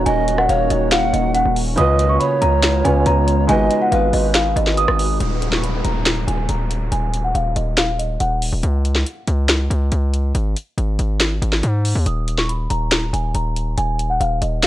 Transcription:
Already playing: felt piano D#3 D#4 F#4 C#5, ambient pad D#3 A#3 C#4 F#4
0.06 808-style bass D#1, pan flute D#5, celesta G#5, closed hi-hat
0.28 closed hi-hat
0.38 celesta F#5, cross-stick
0.49 808-style bass D#1, pan flute C#5, celesta F5, closed hi-hat
0.70 808-style bass D#1, celesta D#5, closed hi-hat
0.92 celesta F5, pan flute F#5, snare, closed hi-hat
1.13 808-style bass D#1, celesta D#5, closed hi-hat
1.34 celesta F#5, closed hi-hat
1.45 808-style bass D#1
1.56 open hi-hat
1.76 808-style bass C#2, felt piano C#3 C#4 F4 B4, ambient pad C#3 G#3 B3 F4, pan flute D#5, celesta D#6, closed hi-hat
1.99 closed hi-hat
2.09 celesta C#6
2.20 pan flute C#5, celesta B5, closed hi-hat
2.42 808-style bass C#2, celesta A#5, closed hi-hat
2.63 snare, closed hi-hat
2.84 808-style bass C#2, felt piano C#3 C#4 F4 B4, celesta G#5, closed hi-hat
3.06 808-style bass C#2, celesta A#5, closed hi-hat
3.28 closed hi-hat
3.47 808-style bass G#1, felt piano G#3 D#4 F#4 B4, ambient pad D#4 F#4 B4, pan flute D#5, celesta G#5, closed hi-hat
3.71 closed hi-hat
3.82 celesta F#5
3.92 808-style bass G#1, pan flute B4, celesta F5, closed hi-hat
4.13 808-style bass G#1, celesta D#5, open hi-hat
4.34 celesta F5, snare, closed hi-hat
4.56 808-style bass G#1, celesta D#5, closed hi-hat
4.67 snare
4.77 celesta D#6, closed hi-hat
4.88 808-style bass G#1, cross-stick
4.99 open hi-hat
5.20 808-style bass D#1, celesta D#6, closed hi-hat, downlifter
5.42 closed hi-hat
5.52 celesta C#6, snare
5.63 celesta B5, closed hi-hat
5.84 808-style bass D#1, celesta A#5, closed hi-hat
6.06 snare, closed hi-hat
6.27 808-style bass D#1, celesta G#5, closed hi-hat
6.49 808-style bass D#1, celesta A#5, closed hi-hat
6.71 closed hi-hat
6.92 808-style bass D#1, celesta G#5, closed hi-hat
7.14 closed hi-hat
7.24 celesta F#5
7.35 808-style bass D#1, celesta F5, closed hi-hat
7.56 808-style bass D#1, celesta D#5, closed hi-hat
7.77 celesta F5, snare, closed hi-hat
7.99 celesta D#5, closed hi-hat
8.20 808-style bass D#1, celesta F#5, closed hi-hat
8.42 open hi-hat
8.52 808-style bass D#1
8.63 808-style bass C#2, closed hi-hat
8.85 closed hi-hat
8.95 snare
9.06 closed hi-hat
9.27 808-style bass C#2, closed hi-hat
9.49 snare, closed hi-hat
9.70 808-style bass C#2, closed hi-hat
9.92 808-style bass C#2, closed hi-hat
10.14 closed hi-hat
10.35 808-style bass G#1, closed hi-hat
10.56 closed hi-hat
10.78 808-style bass G#1, closed hi-hat
10.99 808-style bass G#1, closed hi-hat
11.20 snare, closed hi-hat
11.42 808-style bass G#1, closed hi-hat
11.53 snare
11.63 808-style bass G#2, closed hi-hat
11.85 open hi-hat
11.95 808-style bass D#2
12.06 808-style bass D#1, celesta D#6, closed hi-hat
12.28 closed hi-hat
12.38 celesta C#6, snare
12.49 celesta B5, closed hi-hat
12.70 808-style bass D#1, celesta A#5, closed hi-hat
12.91 snare, closed hi-hat
13.13 808-style bass D#1, celesta G#5, closed hi-hat
13.35 808-style bass D#1, celesta A#5, closed hi-hat
13.56 closed hi-hat
13.77 808-style bass D#1, celesta G#5, closed hi-hat
13.99 closed hi-hat
14.10 celesta F#5
14.20 808-style bass D#1, celesta F5, closed hi-hat
14.42 808-style bass D#1, celesta D#5, closed hi-hat
14.63 celesta F5, snare, closed hi-hat

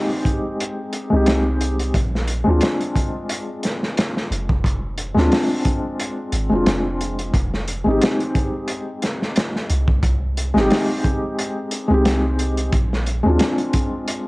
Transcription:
Already playing: felt piano G#3 C4 D#4 G4
0.25 kick, closed hi-hat
0.60 closed hi-hat
0.93 closed hi-hat
1.10 808-style bass C2, felt piano G#3 C4 D#4
1.16 felt piano G4
1.26 snare, closed hi-hat
1.61 closed hi-hat
1.79 closed hi-hat
1.94 808-style bass A#1, kick, closed hi-hat
2.15 snare
2.27 closed hi-hat
2.44 808-style bass D2, felt piano G#3 C4
2.48 felt piano D4 F4
2.61 snare, closed hi-hat
2.81 closed hi-hat
2.96 kick, closed hi-hat
3.29 closed hi-hat
3.63 snare, closed hi-hat
3.83 snare
3.97 snare, closed hi-hat
4.17 snare
4.31 808-style bass F1, closed hi-hat
4.49 kick
4.64 kick, closed hi-hat
4.98 closed hi-hat
5.14 808-style bass D2, felt piano G#3 C4, snare
5.19 felt piano D4 F4
5.32 snare, open hi-hat
5.65 kick, closed hi-hat
6.00 closed hi-hat
6.32 808-style bass G#1, closed hi-hat
6.49 808-style bass F1, felt piano G#3 C4 D4
6.55 felt piano F4
6.66 808-style bass F1, snare, closed hi-hat
7.01 closed hi-hat
7.19 closed hi-hat
7.34 808-style bass F1, kick, closed hi-hat
7.54 snare
7.68 closed hi-hat
7.84 808-style bass G#1, felt piano G#3 C4
7.88 felt piano D#4 G4
8.02 snare, closed hi-hat
8.20 closed hi-hat
8.35 kick, closed hi-hat
8.68 closed hi-hat
9.02 snare, closed hi-hat
9.22 snare
9.36 snare, closed hi-hat
9.56 snare
9.70 808-style bass C2, closed hi-hat
9.88 kick
10.03 kick, closed hi-hat
10.37 closed hi-hat
10.54 808-style bass G#1, felt piano G#3 C4 D#4, snare
10.60 felt piano G4
10.70 snare, open hi-hat
11.04 kick, closed hi-hat
11.38 closed hi-hat
11.71 closed hi-hat
11.88 808-style bass C2, felt piano G#3 C4 D#4
11.94 felt piano G4
12.05 snare, closed hi-hat
12.39 closed hi-hat
12.57 closed hi-hat
12.72 808-style bass A#1, kick, closed hi-hat
12.93 snare
13.06 closed hi-hat
13.23 808-style bass D2, felt piano G#3 C4
13.27 felt piano D4 F4
13.39 snare, closed hi-hat
13.58 closed hi-hat
13.73 kick, closed hi-hat
14.08 closed hi-hat

